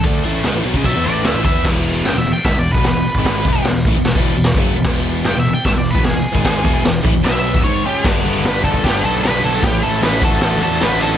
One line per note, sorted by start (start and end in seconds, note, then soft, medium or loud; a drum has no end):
0.03 0.23 D2 loud
0.03 0.23 D3 medium
0.03 0.25 A3 loud
0.03 0.25 D4 loud
0.03 kick loud
0.03 ride loud
0.23 0.44 A1 loud
0.23 0.44 A2 medium
0.23 0.45 E3 loud
0.23 0.45 A3 loud
0.23 ride medium
0.43 0.53 C#2 medium
0.43 0.53 C#3 medium
0.43 0.54 G#3 loud
0.43 snare loud
0.43 ride medium
0.53 0.63 A1 medium
0.53 0.63 A2 medium
0.53 0.65 E3 medium
0.63 0.74 B1 medium
0.63 0.74 B2 loud
0.63 0.75 F#3 loud
0.63 ride medium
0.74 0.84 C#2 medium
0.74 0.84 C#3 loud
0.74 0.86 G#3 loud
0.74 kick medium
0.84 0.94 B1 medium
0.84 0.94 B2 medium
0.84 0.96 F#3 medium
0.84 1.05 E5 medium
0.84 kick medium
0.84 ride loud
0.95 1.05 E2 medium
0.95 1.05 E3 medium
0.95 1.06 B3 medium
1.04 1.24 A1 medium
1.04 1.23 A2 medium
1.04 1.25 E3 loud
1.04 1.24 A3 medium
1.04 1.24 D5 medium
1.04 ride medium
1.23 1.34 D2 loud
1.23 1.34 D3 medium
1.23 1.35 A3 loud
1.23 1.44 E5 medium
1.23 snare loud
1.23 ride medium
1.34 1.44 A1 medium
1.34 1.44 A2 loud
1.34 1.44 E3 medium
1.45 1.64 E2 medium
1.45 1.65 E3 medium
1.45 1.65 B3 loud
1.45 1.66 E4 loud
1.45 1.65 E5 loud
1.45 kick medium
1.45 ride medium
1.65 2.02 E1 loud
1.65 2.05 E2 medium
1.65 2.05 B2 medium
1.65 2.06 E3 loud
1.65 kick loud
1.65 snare loud
1.65 crash loud
1.65 crash medium
2.03 2.12 F#1 medium
2.03 2.15 F#2 medium
2.03 2.15 C#3 loud
2.03 2.18 G5 medium
2.03 snare loud
2.03 crash medium
2.13 2.22 E1 medium
2.13 2.26 E2 medium
2.18 2.26 B2 medium
2.18 2.32 E5 medium
2.23 2.34 E1 medium
2.23 2.36 B2 medium
2.28 2.37 E2 medium
2.32 2.45 G5 medium
2.32 muted picked electric bass stroke soft
2.38 muted overdriven electric guitar stroke medium
2.45 2.52 G#1 medium
2.45 2.55 G#2 medium
2.45 2.56 D#3 loud
2.45 2.59 E5 medium
2.45 kick loud
2.45 snare loud
2.45 crash medium
2.52 2.72 E1 medium
2.58 2.73 E2 medium
2.58 2.73 B2 medium
2.58 2.72 D5 medium
2.72 2.84 E1 loud
2.72 2.85 B4 medium
2.72 kick loud
2.77 2.86 E2 medium
2.77 2.86 B2 medium
2.84 2.94 E1 medium
2.84 2.96 E2 medium
2.84 2.96 B2 medium
2.84 3.64 B4 medium
2.84 snare loud
2.84 crash medium
2.95 3.04 E1 medium
2.95 3.06 E2 medium
2.95 3.06 B2 medium
3.05 muted picked electric bass stroke soft
3.10 muted overdriven electric guitar stroke medium
3.14 3.43 G#1 medium
3.14 3.46 G#2 medium
3.14 kick loud
3.19 3.47 D#3 loud
3.19 3.47 G#3 loud
3.25 kick medium
3.25 snare loud
3.25 crash medium
3.45 3.63 E1 medium
3.45 3.66 E2 medium
3.45 3.66 B2 medium
3.45 kick loud
3.49 3.67 E3 medium
3.63 3.83 E1 medium
3.63 snare loud
3.63 crash medium
3.69 3.83 E2 medium
3.69 3.83 B2 medium
3.85 3.93 A1 loud
3.85 3.95 A2 medium
3.85 3.96 E3 loud
3.85 kick loud
3.94 4.13 E1 medium
3.94 4.12 E2 medium
3.98 4.13 B2 medium
4.05 snare loud
4.05 crash medium
4.15 4.33 E1 medium
4.15 4.35 E2 medium
4.15 4.35 B2 medium
4.15 4.36 E3 medium
4.15 kick loud
4.34 4.53 E1 medium
4.34 4.51 E2 medium
4.34 4.52 B2 medium
4.44 snare loud
4.44 crash medium
4.54 4.73 F#1 loud
4.54 4.75 F#2 medium
4.54 4.76 C#3 medium
4.54 kick loud
4.59 4.76 F#3 loud
4.74 4.84 E1 medium
4.74 4.86 E2 medium
4.74 4.86 B2 medium
4.84 5.22 E1 loud
4.84 5.25 E2 loud
4.84 5.25 B2 loud
4.84 kick loud
4.84 snare loud
4.84 crash medium
4.88 5.26 E3 loud
5.24 5.34 F#1 loud
5.24 5.35 F#2 medium
5.24 5.38 G5 loud
5.24 snare loud
5.24 crash medium
5.29 5.36 C#3 medium
5.36 5.44 E1 medium
5.36 5.45 E2 medium
5.36 5.46 B2 medium
5.36 5.53 E5 medium
5.45 5.54 E1 medium
5.45 5.55 E2 medium
5.45 5.56 B2 medium
5.53 5.65 G5 medium
5.53 muted picked electric bass stroke soft
5.53 muted overdriven electric guitar stroke medium
5.65 5.73 G#1 loud
5.65 5.75 G#2 loud
5.65 5.75 D#3 loud
5.65 5.78 E5 loud
5.65 kick loud
5.65 snare loud
5.65 crash medium
5.74 5.92 E1 medium
5.74 5.91 E2 medium
5.74 5.91 B2 medium
5.74 5.90 D5 loud
5.91 6.03 E2 medium
5.91 6.03 B2 loud
5.91 6.04 B4 medium
5.95 6.04 E1 loud
5.95 kick loud
6.04 6.13 E1 medium
6.04 6.13 E2 medium
6.04 6.13 B2 medium
6.04 6.81 G#4 medium
6.04 snare loud
6.04 crash medium
6.14 6.23 E1 medium
6.14 6.23 E2 medium
6.14 6.24 B2 medium
6.24 muted picked electric bass stroke soft
6.24 muted overdriven electric guitar stroke medium
6.33 6.62 G#1 loud
6.33 6.62 G#2 medium
6.33 6.63 D#3 loud
6.33 6.63 G#3 medium
6.33 kick loud
6.45 kick loud
6.45 snare loud
6.45 crash medium
6.63 6.83 E1 loud
6.63 6.82 E2 medium
6.63 6.83 B2 loud
6.63 6.84 E3 loud
6.63 kick loud
6.84 7.03 E1 medium
6.84 7.00 E2 medium
6.84 7.00 B2 medium
6.84 snare loud
6.84 crash medium
7.03 7.13 A1 medium
7.03 7.12 A2 medium
7.03 7.13 E3 medium
7.03 kick loud
7.13 7.22 E1 medium
7.13 7.24 E2 medium
7.13 7.22 B2 medium
7.24 7.51 B1 medium
7.24 7.53 B2 loud
7.24 7.53 F#3 medium
7.24 7.54 B3 loud
7.24 7.63 E5 loud
7.24 snare loud
7.24 crash medium
7.54 7.63 E1 medium
7.54 7.63 E2 medium
7.54 7.64 B2 medium
7.54 kick loud
7.64 7.83 G#2 medium
7.64 7.84 D#3 loud
7.64 7.84 G#3 loud
7.64 7.83 C#5 medium
7.86 8.04 C#3 loud
7.86 8.03 G#3 medium
7.86 8.04 C#4 loud
7.86 8.04 G4 loud
8.04 8.23 G1 loud
8.04 8.43 G2 loud
8.04 8.44 D3 loud
8.04 8.27 G3 loud
8.04 kick loud
8.04 snare loud
8.04 crash loud
8.09 8.24 B3 loud
8.09 8.22 D4 loud
8.23 8.42 G1 loud
8.23 8.46 B3 medium
8.23 8.48 D4 medium
8.23 ride medium
8.28 8.45 G3 medium
8.42 8.61 G1 medium
8.42 8.83 D3 medium
8.42 8.69 G3 medium
8.42 8.63 B4 loud
8.42 snare loud
8.42 ride loud
8.47 8.66 B3 medium
8.47 8.63 D4 medium
8.64 8.82 G1 medium
8.64 9.25 B3 medium
8.64 9.27 D4 medium
8.64 8.83 A4 medium
8.64 kick medium
8.64 ride medium
8.70 9.24 G3 medium
8.70 kick loud
8.84 9.03 G1 medium
8.84 9.03 G4 medium
8.84 kick loud
8.84 snare loud
8.84 ride loud
9.03 9.22 B1 loud
9.03 9.23 A4 medium
9.03 ride medium
9.23 9.42 B1 loud
9.23 9.61 G2 medium
9.23 9.62 D3 loud
9.23 9.46 G3 loud
9.23 9.44 B3 loud
9.23 9.42 B4 loud
9.23 snare loud
9.23 ride loud
9.28 9.41 D4 loud
9.42 9.62 B1 medium
9.42 9.62 B3 medium
9.42 9.61 D4 medium
9.42 9.63 A4 medium
9.42 ride medium
9.47 9.63 G3 medium
9.62 9.82 A1 loud
9.62 10.02 A2 medium
9.62 10.01 E3 loud
9.62 9.87 A3 loud
9.62 9.84 C#4 loud
9.62 9.82 G4 loud
9.62 kick loud
9.62 snare loud
9.62 ride loud
9.66 9.82 E4 loud
9.83 10.01 A1 medium
9.83 10.04 C#4 medium
9.83 10.07 E4 medium
9.83 10.02 A4 medium
9.83 ride medium
9.88 10.03 A3 medium
10.02 10.21 A1 loud
10.02 10.20 E3 medium
10.02 10.22 A3 medium
10.02 10.22 C#4 medium
10.02 10.22 B4 loud
10.02 snare loud
10.02 ride loud
10.08 10.20 E4 medium
10.21 10.41 A1 medium
10.21 10.81 D3 medium
10.21 10.83 A3 medium
10.21 10.84 D4 medium
10.21 10.84 F#4 medium
10.21 10.42 A4 loud
10.21 kick loud
10.21 ride medium
10.26 10.79 A2 medium
10.41 10.61 A1 medium
10.41 10.62 A4 medium
10.41 snare loud
10.41 ride loud
10.61 10.81 E2 loud
10.61 10.82 A4 medium
10.61 ride medium
10.81 11.01 A1 medium
10.81 11.18 A2 loud
10.81 11.18 D3 loud
10.81 11.04 A3 loud
10.81 11.02 B4 medium
10.81 snare loud
10.81 ride loud
10.85 11.03 D4 loud
10.85 11.00 F#4 loud
11.01 11.18 A1 medium
11.01 11.18 D4 medium
11.01 11.18 F#4 medium
11.01 11.18 A4 medium
11.01 ride medium
11.05 11.18 A3 medium